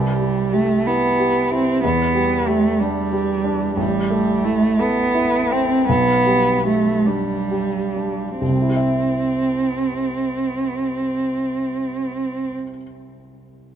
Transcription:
Already playing: upright piano C2, cello G3
0.20 upright piano G3
0.53 cello A3, upright piano G4
0.87 cello B3, upright piano E4
1.20 upright piano G4
1.51 cello C4, upright piano E4
1.84 upright piano E2, cello B3
2.14 upright piano G3
2.47 cello A3, upright piano G4
2.80 cello G3, upright piano D4
3.13 upright piano G4
3.44 upright piano D4
3.77 upright piano A1, cello G3
4.10 upright piano A3
4.44 cello A3, upright piano E4
4.79 cello B3, upright piano A4
5.15 upright piano E4
5.51 upright piano C4, cello C4
5.89 upright piano B1, cello B3
6.26 upright piano G3
6.65 cello A3, upright piano G4
7.06 cello G3, upright piano D4
7.51 upright piano G4
7.96 upright piano D4
8.41 upright piano C2, cello C4
8.48 upright piano C3
8.55 upright piano G3
8.62 upright piano E4
8.69 upright piano G4
8.76 upright piano E5

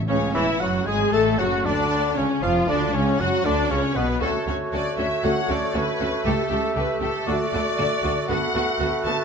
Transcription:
0.07 cello section C#2, double bass section C#2, french horn section C#3, bassoon C#3, clarinet C#4, violin section C#4 C#5, viola section C#4, oboe C#5
0.34 double bass section E1, cello section E2, bassoon E3, french horn section E3, violin section E4 E5, viola section E4, clarinet E4, oboe E5
0.60 double bass section F#1, cello section F#2, french horn section F#3, bassoon F#3, clarinet F#4, violin section F#4 F#5, viola section F#4, oboe F#5
0.86 double bass section G#1, cello section G#2, bassoon G#3, french horn section G#3, viola section G#4, violin section G#4 G#5, clarinet G#4, oboe G#5
1.12 double bass section A1, cello section A2, french horn section A3, bassoon A3, violin section A4 A5, clarinet A4, viola section A4, oboe A5
1.39 double bass section F#1, cello section F#2, bassoon F#3, french horn section F#3, violin section F#4 F#5, viola section F#4, clarinet F#4, oboe F#5
1.65 cello section D2, double bass section D2, bassoon D3, french horn section D3, violin section D4 D5, clarinet D4, viola section D4, oboe D5
2.16 cello section C#2, double bass section C#2, french horn section C#3, bassoon C#3, clarinet C#4, viola section C#4, violin section C#4 C#5, oboe C#5
2.42 double bass section F1, cello section F2, bassoon F3, french horn section F3, clarinet F4, viola section F4, violin section F4 F5, oboe F5
2.68 double bass section D2, cello section D2, bassoon D3, french horn section D3, clarinet D4, viola section D4, violin section D4 D5, oboe D5
2.93 double bass section C#2, cello section C#2, french horn section C#3, bassoon C#3, clarinet C#4, violin section C#4 C#5, viola section C#4, oboe C#5
3.19 double bass section F#1, cello section F#2, french horn section F#3, bassoon F#3, clarinet F#4, violin section F#4 F#5, viola section F#4, oboe F#5
3.45 double bass section D2, cello section D2, french horn section D3, bassoon D3, clarinet D4, viola section D4, violin section D4 D5, oboe D5
3.70 double bass section C#2, cello section C#2, bassoon C#3, french horn section C#3, clarinet C#4, viola section C#4, violin section C#4 C#5, oboe C#5
3.95 double bass section B1, cello section B2, french horn section B2, bassoon B2, clarinet B3, viola section B3, violin section B3 B4, oboe B4
4.20 double bass section D2, cello section D2, french horn section A3 F#4, bassoon A3, viola section C#4 F#4, clarinet F#4, violin section A4, oboe C#5
4.47 cello section D2, double bass section D2, viola section C#4 F#4, violin section A4 C#5
4.73 double bass section D2, cello section D2, viola section C#4 F#4, violin section A4 D5
4.98 cello section D2, double bass section D2, viola section C#4 F#4, violin section A4 E5
5.23 double bass section D2, cello section D2, french horn section A3 F#4, viola section C#4 F#4, violin section A4 F#5
5.49 double bass section D2, cello section D2, viola section C#4 F#4, violin section A4 D5
5.75 double bass section D2, cello section D2, viola section C#4 F#4, violin section A4 B4
6.00 cello section D2, double bass section D2, viola section C#4 F#4, violin section A4
6.25 cello section C#2, double bass section C#2, viola section A3 G4, french horn section A3 G4, clarinet G4, violin section A4, oboe E5
6.50 cello section C#2, double bass section C#2, viola section A3 G4, violin section A4
6.75 double bass section C#2, cello section C#2, viola section A3 G4, violin section A4 B4
7.01 cello section C#2, double bass section C#2, viola section A3 G4, violin section A4
7.27 double bass section D2, cello section D2, viola section A3 F#4, french horn section A3 F#4, clarinet F#4, violin section A4 D5, oboe D5
7.53 cello section D2, double bass section D2, viola section A3 F#4, violin section A4
7.78 cello section D2, double bass section D2, viola section A3 F#4, violin section A4
8.04 cello section D2, double bass section D2, viola section A3 F#4, violin section A4
8.29 double bass section D2, cello section D2, bassoon A3, viola section B3 F#4, french horn section B3 A4, violin section A4 F#5, oboe B4
8.54 double bass section D2, cello section D2, viola section B3 F#4, violin section A4
8.80 double bass section D2, cello section D2, viola section B3 F#4, violin section A4
9.05 double bass section D2, cello section D2, viola section B3 F#4, violin section A4 A5

